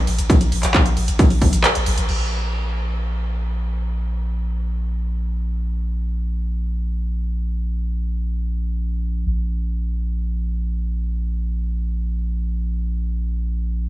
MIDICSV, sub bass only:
0, 0, Header, 1, 2, 480
1, 0, Start_track
1, 0, Tempo, 500000
1, 13335, End_track
2, 0, Start_track
2, 0, Title_t, "Sub bass"
2, 0, Program_c, 0, 38
2, 69, Note_on_c, 0, 34, 103
2, 171, Note_off_c, 0, 34, 0
2, 177, Note_on_c, 0, 34, 84
2, 282, Note_off_c, 0, 34, 0
2, 392, Note_on_c, 0, 34, 77
2, 493, Note_off_c, 0, 34, 0
2, 499, Note_on_c, 0, 34, 104
2, 601, Note_off_c, 0, 34, 0
2, 607, Note_on_c, 0, 34, 85
2, 712, Note_off_c, 0, 34, 0
2, 822, Note_on_c, 0, 34, 78
2, 923, Note_off_c, 0, 34, 0
2, 929, Note_on_c, 0, 34, 102
2, 1031, Note_off_c, 0, 34, 0
2, 1037, Note_on_c, 0, 34, 84
2, 1142, Note_off_c, 0, 34, 0
2, 1252, Note_on_c, 0, 34, 80
2, 1353, Note_off_c, 0, 34, 0
2, 1359, Note_on_c, 0, 34, 100
2, 1461, Note_off_c, 0, 34, 0
2, 1467, Note_on_c, 0, 34, 82
2, 1572, Note_off_c, 0, 34, 0
2, 1682, Note_on_c, 0, 34, 80
2, 1783, Note_off_c, 0, 34, 0
2, 1789, Note_on_c, 0, 34, 99
2, 1891, Note_off_c, 0, 34, 0
2, 1897, Note_on_c, 0, 34, 83
2, 1998, Note_off_c, 0, 34, 0
2, 2004, Note_on_c, 0, 34, 86
2, 8860, Note_off_c, 0, 34, 0
2, 8882, Note_on_c, 0, 34, 88
2, 13335, Note_off_c, 0, 34, 0
2, 13335, End_track
0, 0, End_of_file